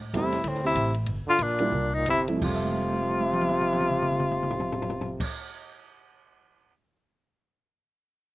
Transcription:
Already playing: A2
0.14 E2 C3 G3 A3 C4 E4, kick, hi-hat pedal, ride
0.33 snare, ride
0.44 D2 A2, kick, ride
0.48 C4
0.55 snare
0.63 C3 E4, snare
0.75 A1, kick, hi-hat pedal, ride
0.94 ride
1.06 G1, kick, ride
1.27 D3 F4, muted upright bass stroke
1.39 A#1 A#2, kick, hi-hat pedal, ride
1.43 D4
1.59 G3 A#3 D4 E4, ride
1.72 C2, kick
1.94 A#2 D#4
2.06 G1 C3, kick, hi-hat pedal, ride
2.10 E4
2.28 F2 G3 A3 C4 E4, ride
2.36 F3
2.42 F1 C3 G3 F4, kick, crash
2.49 A3
2.55 E5
2.64 high tom
2.71 high tom
2.80 high tom
2.92 high tom
3.03 high tom
3.10 high tom
3.21 high tom
3.33 mid tom
3.41 mid tom
3.49 mid tom
3.62 mid tom
3.73 mid tom
3.81 mid tom
3.90 mid tom
4.02 mid tom
4.12 mid tom
4.20 mid tom
4.31 mid tom
4.43 mid tom
4.50 floor tom
4.60 floor tom
4.72 floor tom
4.82 floor tom
4.90 floor tom
5.01 floor tom
5.20 kick, crash

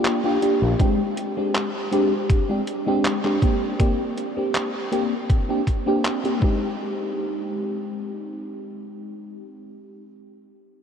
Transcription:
Already playing: A#3 D4 F4 G4
0.05 clap, closed hi-hat
0.24 A#3 D4 F4 G4
0.42 A#3 D4 F4 G4, closed hi-hat
0.62 A#1
0.79 G#3 C4 D4 G4, kick, closed hi-hat
1.17 closed hi-hat
1.37 G#3 C4 D4 G4
1.55 clap, closed hi-hat
1.91 G#3 C4 D4 G4, closed hi-hat
2.30 kick, closed hi-hat
2.49 G#3 C4 D4 G4
2.67 closed hi-hat
2.86 G#3 C4 D4 G4
3.05 clap, closed hi-hat
3.24 G#3 C4 D4 G4, clap
3.42 A#3 C4 D4 G4, kick, closed hi-hat
3.79 A#3 C4 D4 G4, kick, closed hi-hat
4.18 closed hi-hat
4.37 A#3 C4 D4 G4
4.55 clap, closed hi-hat
4.91 A#3 C4 D4 G4, closed hi-hat
5.30 kick, closed hi-hat
5.49 A#3 C4 D4 G4
5.67 kick, closed hi-hat
5.86 A#3 C4 D4 G4
6.05 clap, closed hi-hat
6.24 A#3 C4 D4 G4, closed hi-hat
6.40 G#3 C4 D#4, kick
6.44 G4

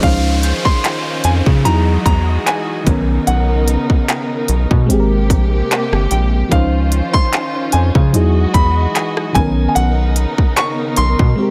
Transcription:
Already playing: G#4 D6
0.00 C#2 D#3 F3 C#4 F4 C5 F5, kick, closed hi-hat, downlifter
0.05 D#4 C5
0.43 G6, closed hi-hat
0.65 C6, kick
0.84 clap, closed hi-hat
1.24 F2 G#5, closed hi-hat
1.46 C#3, kick
1.64 E2 E3 F#3 G#3 D#4 E4 F#4 D#5 A#5, closed hi-hat
1.74 G#4
2.06 E2 A#5, kick, closed hi-hat
2.46 G#5, clap, closed hi-hat
2.84 B1 C#3 D#3 B3 D#4 A#4, kick, closed hi-hat
2.88 C#4 A#4
3.27 B1 F#5, closed hi-hat
3.68 closed hi-hat
3.90 kick
4.09 clap, closed hi-hat
4.48 B1, closed hi-hat
4.71 B2, kick
4.87 G#1 C3 G#3 A#3 C4 G4, closed hi-hat
4.91 G4 G#4
5.00 A#4
5.30 A#1, kick, closed hi-hat
5.71 clap, closed hi-hat
5.92 G1, cross-stick
6.11 A#1 G5, closed hi-hat
6.49 C#2 D#3 F3 C#4 F4 C5 F5, kick, closed hi-hat
6.53 D#4 C5
6.92 closed hi-hat
7.13 C6, kick
7.33 clap, closed hi-hat
7.72 F2 G#5, closed hi-hat
7.95 C#3, kick
8.13 E2 E3 F#3 G#3 D#4 E4 F#4 G#4 D#5, closed hi-hat
8.54 E2 B5, kick, closed hi-hat
8.95 G#5, clap, closed hi-hat
9.17 cross-stick
9.33 B1 C#3 D#3 B3 D#4 A#4 G#5, kick, closed hi-hat
9.37 C#4 A#4
9.69 G#5
9.75 B1 F#5, closed hi-hat
10.16 closed hi-hat
10.38 kick
10.56 C#6, clap, closed hi-hat
10.96 B1 C6, closed hi-hat
11.19 B2, kick
11.36 C3 G#3 C4 G4
11.40 G4 A#4

